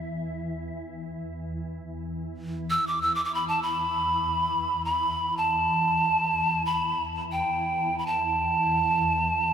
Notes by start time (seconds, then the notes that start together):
Already playing: E2
1.88 E2
2.70 E6
2.87 D6
3.02 E6
3.15 D6
3.25 D6
3.35 B5
3.48 A5
3.62 B5
4.85 B5
5.37 A5
6.66 B5
7.32 G5
7.99 B5
8.06 A5